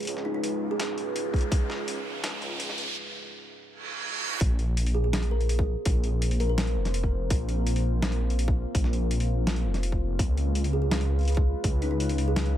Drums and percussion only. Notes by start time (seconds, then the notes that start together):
0.00 closed hi-hat
0.03 closed hi-hat
0.05 closed hi-hat
0.07 closed hi-hat
0.17 snare
0.44 closed hi-hat
0.80 snare, closed hi-hat
0.98 closed hi-hat
1.16 closed hi-hat
1.34 kick, closed hi-hat
1.36 closed hi-hat
1.39 closed hi-hat
1.41 closed hi-hat
1.52 kick, closed hi-hat
1.70 snare
1.88 closed hi-hat
2.24 snare, closed hi-hat
2.42 closed hi-hat
2.60 closed hi-hat
2.69 snare
2.78 closed hi-hat
4.41 kick, closed hi-hat
4.59 closed hi-hat
4.77 closed hi-hat
4.86 open hi-hat
5.13 snare, closed hi-hat
5.22 open hi-hat
5.41 closed hi-hat
5.49 closed hi-hat
5.59 kick
5.85 kick, closed hi-hat
6.04 closed hi-hat
6.22 closed hi-hat
6.31 open hi-hat
6.40 open hi-hat
6.58 snare, closed hi-hat
6.67 closed hi-hat
6.85 snare, closed hi-hat
6.94 closed hi-hat
7.04 kick
7.30 kick, closed hi-hat
7.49 closed hi-hat
7.67 closed hi-hat
7.76 open hi-hat
8.02 snare, closed hi-hat
8.12 open hi-hat
8.30 closed hi-hat
8.39 closed hi-hat
8.48 kick
8.75 kick, closed hi-hat
8.84 snare
8.93 closed hi-hat
9.11 closed hi-hat
9.20 open hi-hat
9.47 snare, closed hi-hat
9.56 closed hi-hat
9.74 snare, closed hi-hat
9.83 closed hi-hat
9.92 kick
10.19 kick, closed hi-hat
10.37 closed hi-hat
10.55 closed hi-hat
10.64 open hi-hat
10.91 snare, closed hi-hat
11.01 open hi-hat
11.19 closed hi-hat
11.21 closed hi-hat
11.23 closed hi-hat
11.25 closed hi-hat
11.28 closed hi-hat
11.30 closed hi-hat
11.32 closed hi-hat
11.35 kick, closed hi-hat
11.64 kick, closed hi-hat
11.82 closed hi-hat
12.00 closed hi-hat
12.09 open hi-hat
12.18 open hi-hat
12.36 snare, closed hi-hat
12.46 closed hi-hat